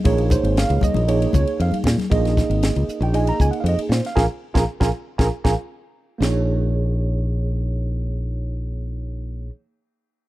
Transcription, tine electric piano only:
0.04 1.02 A#3 medium
0.04 1.02 D#4 medium
0.04 1.02 G#4 medium
0.04 1.03 C#5 medium
0.32 0.56 C5 medium
0.58 0.82 F5 medium
0.84 1.31 D#5 medium
1.07 2.05 A#3 medium
1.07 2.05 D#4 medium
1.07 2.05 G#4 medium
1.07 1.33 C#5 medium
1.34 1.59 C#5 medium
1.62 1.76 F5 medium
2.10 3.07 A#3 medium
2.10 3.07 D#4 medium
2.10 3.08 G#4 medium
2.10 3.08 D#5 medium
3.03 3.14 G5 medium
3.13 4.10 A#3 medium
3.13 4.10 D#4 medium
3.13 3.81 G#4 medium
3.13 3.67 D#5 medium
3.13 3.27 G#5 medium
3.29 3.40 A#5 medium
3.41 3.48 G#5 medium
3.51 3.57 F#5 medium
3.60 3.66 F5 medium
3.69 3.79 D#5 medium
3.82 3.92 G#4 soft
3.92 4.04 C5 medium
4.06 4.15 F5 medium
4.16 4.24 F4 medium
4.16 4.24 G#4 medium
4.16 4.24 A#4 medium
4.16 4.24 F5 medium
4.16 4.24 G#5 medium
4.16 4.24 A#5 medium
4.54 4.62 F4 medium
4.54 4.62 G#4 medium
4.54 4.63 A#4 medium
4.54 4.62 F5 medium
4.54 4.63 G#5 medium
4.54 4.63 A#5 medium
4.80 4.88 F4 medium
4.80 4.88 G#4 medium
4.80 4.88 A#4 medium
4.80 4.88 F5 medium
4.80 4.89 G#5 medium
4.80 4.89 A#5 medium
5.18 5.27 F4 medium
5.18 5.27 G#4 medium
5.18 5.27 A#4 medium
5.18 5.27 F5 medium
5.18 5.27 G#5 medium
5.18 5.27 A#5 medium
5.44 5.53 F4 medium
5.44 5.53 G#4 medium
5.44 5.53 A#4 medium
5.44 5.52 F5 medium
5.44 5.53 G#5 medium
5.44 5.53 A#5 medium
6.18 9.47 A#3 medium
6.18 9.49 D#4 medium
6.22 9.51 G#4 medium
6.22 9.53 C#5 medium

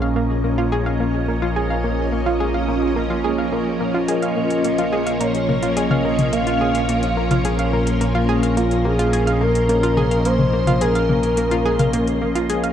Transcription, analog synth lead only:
4.08 5.22 D#5 loud
5.20 5.78 C#5 medium
5.76 6.34 D#5 loud
6.32 7.17 F5 loud
8.57 8.87 F4 medium
8.85 9.43 G#4 loud
9.41 10.27 A#4 loud
10.26 10.83 C5 loud
10.82 12.50 A#4 loud

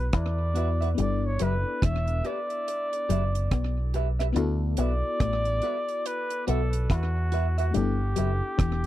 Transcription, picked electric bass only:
0.00 0.10 B1 medium
0.14 0.94 E2 loud
0.99 1.37 G1 medium
1.40 1.64 F#1 medium
1.83 2.21 E1 medium
3.09 3.48 F#1 medium
3.52 4.32 B1 medium
4.36 4.75 D2 loud
4.78 5.02 B1 medium
5.21 5.60 A1 loud
6.48 6.87 B1 medium
6.90 7.71 E2 medium
7.76 8.14 G1 loud
8.18 8.41 F#1 medium
8.59 8.87 E1 medium

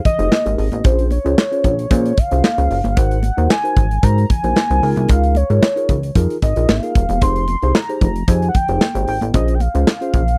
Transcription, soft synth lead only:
0.06 0.55 D#5 loud
0.59 0.87 D#5 medium
0.85 1.11 C5 loud
1.12 2.20 C#5 loud
2.18 2.99 F5 loud
2.97 3.50 F#5 loud
3.51 4.05 G#5 loud
4.04 4.32 A#5 loud
4.30 5.12 G#5 loud
5.10 5.38 F5 loud
5.37 6.16 C#5 loud
6.43 6.71 D#5 loud
6.70 7.22 F5 medium
7.23 7.77 C6 loud
7.76 8.31 A#5 loud
8.29 8.48 G#5 loud
8.49 8.57 F#5 medium
8.56 9.08 G5 loud
9.08 9.20 G5 medium
9.35 9.56 D#5 loud
9.54 9.62 G5 medium
9.61 10.38 F5 loud

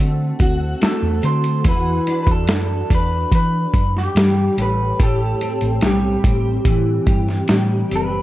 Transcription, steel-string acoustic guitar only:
0.00 1.64 D3 medium
0.00 0.80 A3 medium
0.00 1.21 C4 medium
0.00 0.38 F#4 medium
0.39 1.65 F#4 medium
0.81 1.73 A3 medium
1.22 1.73 C4 medium
1.65 5.15 E3 medium
1.65 3.74 F#4 medium
2.07 2.89 D4 medium
2.90 4.65 D4 soft
4.16 5.02 G3 medium
4.58 4.98 A2 medium
4.99 8.22 A2 medium
4.99 7.08 G4 medium
5.41 6.24 C4 soft
5.84 7.50 G3 medium
6.25 7.91 C4 medium
6.67 8.22 E3 medium
7.08 8.22 G4 medium
7.50 8.22 G3 medium
7.92 8.22 C4 medium

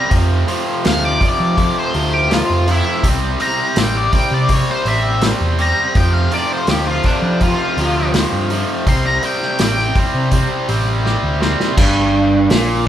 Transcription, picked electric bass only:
0.12 0.42 F2 medium
0.86 1.16 D2 medium
1.40 1.71 F3 medium
1.95 2.41 D2 medium
2.50 2.80 F2 medium
3.04 3.35 C2 medium
3.77 4.08 A1 medium
4.31 4.62 C3 medium
4.85 5.32 A1 medium
5.41 5.71 E2 medium
5.95 6.26 F2 medium
6.68 6.99 D2 medium
7.22 7.53 F3 medium
7.77 8.24 D2 loud
8.32 8.63 G2 medium
8.86 9.17 C2 medium
9.60 9.91 A1 medium
10.14 10.45 C3 medium
10.69 11.15 A1 medium
11.23 11.54 D2 medium
11.77 12.46 G1 loud
12.51 12.85 A#1 medium

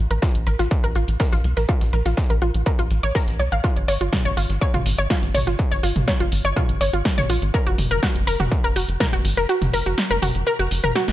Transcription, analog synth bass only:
0.11 0.19 A#1 medium
0.35 0.44 A#1 medium
0.47 0.56 A#1 medium
0.59 0.68 A#1 medium
0.84 0.93 A#1 medium
0.96 1.05 A#1 loud
1.08 1.17 A#1 medium
1.32 1.41 A#1 medium
1.44 1.54 C2 medium
1.57 1.66 A#1 medium
1.81 1.90 A#1 medium
1.93 2.03 A#1 loud
2.06 2.15 A#1 medium
2.30 2.39 A#1 medium
2.42 2.51 A#1 loud
2.55 2.63 A#1 medium
2.79 2.88 A#1 medium
2.91 3.00 A#1 loud
3.03 3.12 A#1 medium
3.28 3.37 A#1 medium
3.40 3.49 C2 medium
3.52 3.61 A#1 medium
3.76 3.85 G#1 medium
3.88 3.98 G#1 loud
4.01 4.10 G#1 medium
4.25 4.34 G#1 medium
4.37 4.46 G#1 loud
4.50 4.58 G#1 medium
4.74 4.83 G#1 medium
4.86 4.95 G#1 loud
4.98 5.07 G#1 medium
5.23 5.32 G#1 medium
5.35 5.44 A#1 loud
5.47 5.56 G#1 medium
5.72 5.80 G#1 medium
5.83 5.93 G#1 loud
5.96 6.05 G#1 medium
6.20 6.29 G#1 medium
6.32 6.42 G#1 medium
6.45 6.53 G#1 medium
6.69 6.78 G#1 medium
6.81 6.90 G#1 loud
6.93 7.02 G#1 medium
7.18 7.27 G#1 medium
7.30 7.39 A#1 medium
7.42 7.51 G#1 medium
7.67 7.75 F#1 medium
7.78 7.88 F#1 loud
7.91 8.00 F#1 medium
8.15 8.24 F#1 medium
8.27 8.37 F#1 medium
8.40 8.49 F#1 medium
8.64 8.73 F#1 medium
8.76 8.85 F#1 medium
8.89 8.97 F#1 medium
9.13 9.22 F#1 medium
9.25 9.34 G#1 medium
9.37 9.46 F#1 medium
9.62 9.71 F#1 medium
9.74 9.83 F#1 loud
9.86 9.95 F#1 medium
10.11 10.19 F#1 medium
10.22 10.32 F#1 loud
10.35 10.44 F#1 medium
10.59 10.68 F#1 medium
10.71 10.81 F#1 loud
10.84 10.93 F#1 medium
11.08 11.12 F#1 medium

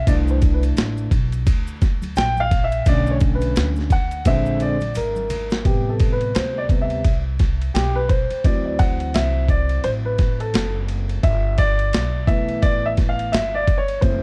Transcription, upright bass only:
0.07 0.74 C2 loud
0.77 1.10 A1 loud
1.11 1.45 B1 medium
1.47 2.13 D2 medium
2.17 2.83 A#1 medium
2.86 3.53 B1 loud
3.57 4.23 D2 medium
4.26 4.92 A#1 medium
4.96 5.62 G#1 medium
5.65 6.32 A1 loud
6.36 7.02 D2 medium
7.05 7.71 C2 medium
7.75 8.28 B1 medium
8.31 muted upright bass stroke medium
8.45 9.11 D2 loud
9.15 9.81 C2 medium
9.84 10.50 A1 medium
10.54 11.20 F#1 medium
11.24 11.90 G1 loud
11.94 12.60 B1 medium
12.63 13.29 A1 medium
13.33 13.99 G1 medium
14.03 14.23 F#1 loud

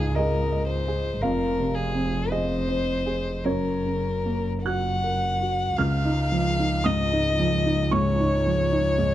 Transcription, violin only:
0.00 0.17 G#4 medium
0.15 0.67 A#4 medium
0.68 1.22 C5 medium
1.21 1.76 A#4 medium
1.75 2.32 G#4 medium
2.30 3.46 C5 medium
3.44 4.52 A#4 medium
4.64 5.78 F#5 medium
5.76 6.87 F5 medium
6.86 7.94 D#5 medium
7.93 9.14 C#5 medium

